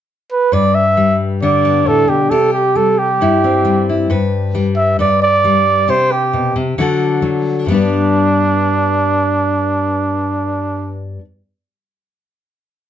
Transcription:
0, 0, Header, 1, 3, 480
1, 0, Start_track
1, 0, Key_signature, 1, "major"
1, 0, Tempo, 446429
1, 566, Time_signature, 4, 2, 24, 8
1, 13860, End_track
2, 0, Start_track
2, 0, Title_t, "Trumpet"
2, 0, Program_c, 0, 56
2, 342, Note_on_c, 0, 71, 52
2, 575, Note_on_c, 0, 74, 60
2, 591, Note_off_c, 0, 71, 0
2, 806, Note_on_c, 0, 76, 68
2, 822, Note_off_c, 0, 74, 0
2, 1284, Note_off_c, 0, 76, 0
2, 1539, Note_on_c, 0, 74, 69
2, 2013, Note_on_c, 0, 69, 65
2, 2029, Note_off_c, 0, 74, 0
2, 2253, Note_on_c, 0, 67, 58
2, 2269, Note_off_c, 0, 69, 0
2, 2479, Note_on_c, 0, 69, 66
2, 2495, Note_off_c, 0, 67, 0
2, 2719, Note_off_c, 0, 69, 0
2, 2726, Note_on_c, 0, 67, 57
2, 2973, Note_on_c, 0, 69, 58
2, 2989, Note_off_c, 0, 67, 0
2, 3213, Note_on_c, 0, 67, 59
2, 3229, Note_off_c, 0, 69, 0
2, 4165, Note_off_c, 0, 67, 0
2, 5124, Note_on_c, 0, 76, 67
2, 5345, Note_off_c, 0, 76, 0
2, 5375, Note_on_c, 0, 74, 74
2, 5591, Note_off_c, 0, 74, 0
2, 5619, Note_on_c, 0, 74, 82
2, 6342, Note_on_c, 0, 72, 73
2, 6358, Note_off_c, 0, 74, 0
2, 6581, Note_on_c, 0, 67, 60
2, 6597, Note_off_c, 0, 72, 0
2, 7052, Note_off_c, 0, 67, 0
2, 8259, Note_on_c, 0, 62, 64
2, 11768, Note_off_c, 0, 62, 0
2, 13860, End_track
3, 0, Start_track
3, 0, Title_t, "Steel-string acoustic guitar"
3, 0, Program_c, 1, 25
3, 559, Note_on_c, 1, 43, 51
3, 570, Note_on_c, 1, 71, 48
3, 1044, Note_on_c, 1, 55, 43
3, 1531, Note_on_c, 1, 50, 49
3, 1539, Note_on_c, 1, 62, 45
3, 1772, Note_on_c, 1, 59, 39
3, 1998, Note_off_c, 1, 43, 0
3, 2004, Note_on_c, 1, 45, 41
3, 2230, Note_off_c, 1, 45, 0
3, 2234, Note_on_c, 1, 47, 37
3, 2454, Note_off_c, 1, 71, 0
3, 2457, Note_off_c, 1, 50, 0
3, 2457, Note_off_c, 1, 59, 0
3, 2477, Note_off_c, 1, 47, 0
3, 2485, Note_on_c, 1, 48, 48
3, 2487, Note_off_c, 1, 62, 0
3, 2490, Note_on_c, 1, 67, 48
3, 2957, Note_off_c, 1, 55, 0
3, 2961, Note_on_c, 1, 55, 45
3, 3441, Note_off_c, 1, 48, 0
3, 3451, Note_on_c, 1, 43, 51
3, 3459, Note_on_c, 1, 64, 49
3, 3700, Note_on_c, 1, 60, 40
3, 3916, Note_off_c, 1, 55, 0
3, 3920, Note_on_c, 1, 55, 45
3, 4169, Note_off_c, 1, 64, 0
3, 4186, Note_on_c, 1, 64, 38
3, 4380, Note_off_c, 1, 60, 0
3, 4383, Note_off_c, 1, 64, 0
3, 4392, Note_off_c, 1, 43, 0
3, 4405, Note_on_c, 1, 43, 57
3, 4409, Note_off_c, 1, 67, 0
3, 4414, Note_on_c, 1, 71, 47
3, 4884, Note_off_c, 1, 55, 0
3, 4888, Note_on_c, 1, 55, 44
3, 5335, Note_off_c, 1, 55, 0
3, 5338, Note_off_c, 1, 71, 0
3, 5351, Note_off_c, 1, 43, 0
3, 5364, Note_on_c, 1, 43, 59
3, 5378, Note_on_c, 1, 71, 54
3, 5851, Note_on_c, 1, 55, 45
3, 6297, Note_off_c, 1, 55, 0
3, 6301, Note_off_c, 1, 71, 0
3, 6321, Note_on_c, 1, 48, 53
3, 6323, Note_off_c, 1, 43, 0
3, 6329, Note_on_c, 1, 67, 53
3, 6810, Note_on_c, 1, 47, 45
3, 7037, Note_off_c, 1, 48, 0
3, 7046, Note_off_c, 1, 47, 0
3, 7051, Note_on_c, 1, 48, 45
3, 7285, Note_off_c, 1, 67, 0
3, 7286, Note_off_c, 1, 48, 0
3, 7291, Note_on_c, 1, 50, 54
3, 7295, Note_on_c, 1, 54, 48
3, 7310, Note_on_c, 1, 62, 48
3, 7320, Note_on_c, 1, 66, 48
3, 7328, Note_on_c, 1, 69, 51
3, 7752, Note_off_c, 1, 54, 0
3, 7765, Note_on_c, 1, 54, 48
3, 8216, Note_off_c, 1, 54, 0
3, 8219, Note_off_c, 1, 50, 0
3, 8229, Note_off_c, 1, 62, 0
3, 8234, Note_off_c, 1, 66, 0
3, 8238, Note_off_c, 1, 69, 0
3, 8239, Note_on_c, 1, 43, 48
3, 8262, Note_on_c, 1, 55, 44
3, 8281, Note_on_c, 1, 59, 45
3, 8300, Note_on_c, 1, 62, 43
3, 8325, Note_on_c, 1, 71, 40
3, 12002, Note_off_c, 1, 43, 0
3, 12025, Note_off_c, 1, 55, 0
3, 12045, Note_off_c, 1, 59, 0
3, 12063, Note_off_c, 1, 62, 0
3, 12088, Note_off_c, 1, 71, 0
3, 13860, End_track
0, 0, End_of_file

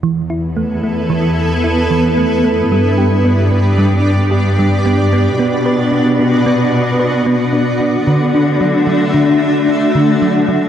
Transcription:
0, 0, Header, 1, 4, 480
1, 0, Start_track
1, 0, Tempo, 535714
1, 33, Time_signature, 5, 2, 24, 8
1, 9576, End_track
2, 0, Start_track
2, 0, Title_t, "Ambient pad"
2, 0, Program_c, 0, 92
2, 36, Note_on_c, 0, 71, 57
2, 43, Note_on_c, 0, 59, 60
2, 43, Note_on_c, 0, 64, 58
2, 44, Note_on_c, 0, 69, 58
2, 2399, Note_off_c, 0, 71, 0
2, 2402, Note_off_c, 0, 64, 0
2, 2403, Note_off_c, 0, 69, 0
2, 2424, Note_on_c, 0, 74, 62
2, 2432, Note_on_c, 0, 62, 59
2, 2432, Note_on_c, 0, 67, 60
2, 4802, Note_off_c, 0, 59, 0
2, 4833, Note_off_c, 0, 67, 0
2, 4834, Note_on_c, 0, 66, 60
2, 4835, Note_on_c, 0, 59, 61
2, 7199, Note_off_c, 0, 59, 0
2, 7210, Note_off_c, 0, 62, 0
2, 7221, Note_on_c, 0, 62, 60
2, 7226, Note_on_c, 0, 76, 60
2, 7229, Note_off_c, 0, 74, 0
2, 7229, Note_on_c, 0, 57, 61
2, 9576, Note_off_c, 0, 57, 0
2, 9576, Note_off_c, 0, 62, 0
2, 9576, Note_off_c, 0, 66, 0
2, 9576, Note_off_c, 0, 76, 0
2, 9576, End_track
3, 0, Start_track
3, 0, Title_t, "Synth arpeggio sound"
3, 0, Program_c, 1, 84
3, 29, Note_on_c, 1, 52, 67
3, 174, Note_off_c, 1, 52, 0
3, 269, Note_on_c, 1, 64, 44
3, 414, Note_off_c, 1, 64, 0
3, 508, Note_on_c, 1, 57, 52
3, 653, Note_off_c, 1, 57, 0
3, 748, Note_on_c, 1, 57, 44
3, 894, Note_off_c, 1, 57, 0
3, 985, Note_on_c, 1, 52, 63
3, 1131, Note_off_c, 1, 52, 0
3, 1470, Note_on_c, 1, 64, 44
3, 1615, Note_off_c, 1, 64, 0
3, 1709, Note_on_c, 1, 52, 66
3, 1854, Note_off_c, 1, 52, 0
3, 1950, Note_on_c, 1, 57, 56
3, 2095, Note_off_c, 1, 57, 0
3, 2190, Note_on_c, 1, 57, 50
3, 2335, Note_off_c, 1, 57, 0
3, 2435, Note_on_c, 1, 55, 70
3, 2579, Note_off_c, 1, 55, 0
3, 2670, Note_on_c, 1, 67, 47
3, 2815, Note_off_c, 1, 67, 0
3, 2913, Note_on_c, 1, 59, 48
3, 3057, Note_off_c, 1, 59, 0
3, 3152, Note_on_c, 1, 59, 48
3, 3296, Note_off_c, 1, 59, 0
3, 3390, Note_on_c, 1, 55, 70
3, 3535, Note_off_c, 1, 55, 0
3, 3863, Note_on_c, 1, 67, 48
3, 4010, Note_off_c, 1, 67, 0
3, 4114, Note_on_c, 1, 55, 71
3, 4258, Note_off_c, 1, 55, 0
3, 4352, Note_on_c, 1, 59, 55
3, 4496, Note_off_c, 1, 59, 0
3, 4595, Note_on_c, 1, 59, 57
3, 4739, Note_off_c, 1, 59, 0
3, 4833, Note_on_c, 1, 59, 70
3, 4977, Note_off_c, 1, 59, 0
3, 5069, Note_on_c, 1, 71, 52
3, 5214, Note_off_c, 1, 71, 0
3, 5300, Note_on_c, 1, 62, 54
3, 5448, Note_off_c, 1, 62, 0
3, 5551, Note_on_c, 1, 62, 50
3, 5696, Note_off_c, 1, 62, 0
3, 5789, Note_on_c, 1, 59, 73
3, 5934, Note_off_c, 1, 59, 0
3, 6268, Note_on_c, 1, 71, 45
3, 6413, Note_off_c, 1, 71, 0
3, 6509, Note_on_c, 1, 59, 73
3, 6655, Note_off_c, 1, 59, 0
3, 6746, Note_on_c, 1, 62, 55
3, 6892, Note_off_c, 1, 62, 0
3, 6989, Note_on_c, 1, 62, 56
3, 7135, Note_off_c, 1, 62, 0
3, 7233, Note_on_c, 1, 50, 73
3, 7377, Note_off_c, 1, 50, 0
3, 7479, Note_on_c, 1, 62, 50
3, 7621, Note_off_c, 1, 62, 0
3, 7713, Note_on_c, 1, 54, 52
3, 7857, Note_off_c, 1, 54, 0
3, 7948, Note_on_c, 1, 54, 52
3, 8093, Note_off_c, 1, 54, 0
3, 8191, Note_on_c, 1, 50, 69
3, 8336, Note_off_c, 1, 50, 0
3, 8680, Note_on_c, 1, 62, 45
3, 8822, Note_off_c, 1, 62, 0
3, 8917, Note_on_c, 1, 50, 68
3, 9060, Note_off_c, 1, 50, 0
3, 9158, Note_on_c, 1, 54, 56
3, 9301, Note_off_c, 1, 54, 0
3, 9394, Note_on_c, 1, 54, 52
3, 9538, Note_off_c, 1, 54, 0
3, 9576, End_track
4, 0, Start_track
4, 0, Title_t, "Cello section"
4, 0, Program_c, 2, 48
4, 31, Note_on_c, 2, 40, 38
4, 2396, Note_off_c, 2, 40, 0
4, 2432, Note_on_c, 2, 43, 42
4, 4797, Note_off_c, 2, 43, 0
4, 4831, Note_on_c, 2, 47, 50
4, 7230, Note_on_c, 2, 50, 52
4, 7232, Note_off_c, 2, 47, 0
4, 9417, Note_off_c, 2, 50, 0
4, 9576, End_track
0, 0, End_of_file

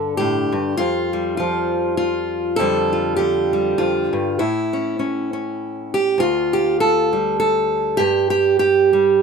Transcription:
0, 0, Header, 1, 2, 480
1, 0, Start_track
1, 0, Key_signature, -1, "minor"
1, 0, Tempo, 600601
1, 631, Time_signature, 3, 2, 24, 8
1, 7372, End_track
2, 0, Start_track
2, 0, Title_t, "Steel-string acoustic guitar"
2, 0, Program_c, 0, 25
2, 0, Note_on_c, 0, 43, 78
2, 0, Note_on_c, 0, 50, 64
2, 0, Note_on_c, 0, 62, 43
2, 0, Note_on_c, 0, 69, 116
2, 135, Note_off_c, 0, 69, 0
2, 139, Note_on_c, 0, 67, 93
2, 158, Note_on_c, 0, 45, 59
2, 409, Note_off_c, 0, 43, 0
2, 419, Note_on_c, 0, 43, 65
2, 421, Note_off_c, 0, 45, 0
2, 610, Note_off_c, 0, 62, 0
2, 619, Note_on_c, 0, 65, 103
2, 625, Note_off_c, 0, 67, 0
2, 627, Note_off_c, 0, 43, 0
2, 630, Note_on_c, 0, 41, 79
2, 636, Note_off_c, 0, 50, 0
2, 905, Note_on_c, 0, 55, 47
2, 1087, Note_off_c, 0, 65, 0
2, 1097, Note_on_c, 0, 65, 79
2, 1116, Note_on_c, 0, 53, 63
2, 1568, Note_off_c, 0, 65, 0
2, 1577, Note_on_c, 0, 65, 84
2, 2044, Note_off_c, 0, 41, 0
2, 2048, Note_off_c, 0, 53, 0
2, 2048, Note_on_c, 0, 69, 105
2, 2064, Note_off_c, 0, 65, 0
2, 2068, Note_on_c, 0, 41, 84
2, 2070, Note_off_c, 0, 55, 0
2, 2076, Note_on_c, 0, 50, 51
2, 2080, Note_on_c, 0, 55, 52
2, 2087, Note_on_c, 0, 65, 51
2, 2329, Note_off_c, 0, 65, 0
2, 2339, Note_on_c, 0, 65, 53
2, 2526, Note_off_c, 0, 69, 0
2, 2529, Note_on_c, 0, 67, 89
2, 2536, Note_off_c, 0, 50, 0
2, 2546, Note_on_c, 0, 50, 63
2, 2812, Note_off_c, 0, 55, 0
2, 2821, Note_on_c, 0, 55, 48
2, 3010, Note_off_c, 0, 65, 0
2, 3013, Note_off_c, 0, 41, 0
2, 3021, Note_on_c, 0, 41, 60
2, 3022, Note_on_c, 0, 65, 81
2, 3293, Note_off_c, 0, 41, 0
2, 3299, Note_on_c, 0, 43, 65
2, 3500, Note_off_c, 0, 67, 0
2, 3505, Note_off_c, 0, 65, 0
2, 3508, Note_off_c, 0, 50, 0
2, 3508, Note_on_c, 0, 45, 75
2, 3510, Note_on_c, 0, 64, 79
2, 3511, Note_off_c, 0, 43, 0
2, 3512, Note_off_c, 0, 55, 0
2, 3782, Note_on_c, 0, 61, 46
2, 3981, Note_off_c, 0, 61, 0
2, 3991, Note_on_c, 0, 61, 61
2, 4252, Note_off_c, 0, 61, 0
2, 4261, Note_on_c, 0, 61, 48
2, 4735, Note_off_c, 0, 64, 0
2, 4747, Note_on_c, 0, 67, 94
2, 4927, Note_off_c, 0, 61, 0
2, 4938, Note_on_c, 0, 38, 74
2, 4949, Note_off_c, 0, 45, 0
2, 4955, Note_off_c, 0, 67, 0
2, 4955, Note_on_c, 0, 65, 93
2, 5221, Note_on_c, 0, 67, 83
2, 5432, Note_off_c, 0, 67, 0
2, 5437, Note_on_c, 0, 69, 87
2, 5696, Note_on_c, 0, 55, 42
2, 5699, Note_off_c, 0, 65, 0
2, 5902, Note_off_c, 0, 69, 0
2, 5911, Note_on_c, 0, 69, 87
2, 6370, Note_on_c, 0, 67, 103
2, 6384, Note_off_c, 0, 38, 0
2, 6388, Note_on_c, 0, 43, 74
2, 6391, Note_off_c, 0, 69, 0
2, 6625, Note_off_c, 0, 67, 0
2, 6635, Note_on_c, 0, 67, 91
2, 6859, Note_off_c, 0, 67, 0
2, 6868, Note_on_c, 0, 67, 84
2, 7134, Note_off_c, 0, 55, 0
2, 7137, Note_on_c, 0, 55, 49
2, 7372, Note_off_c, 0, 43, 0
2, 7372, Note_off_c, 0, 55, 0
2, 7372, Note_off_c, 0, 67, 0
2, 7372, End_track
0, 0, End_of_file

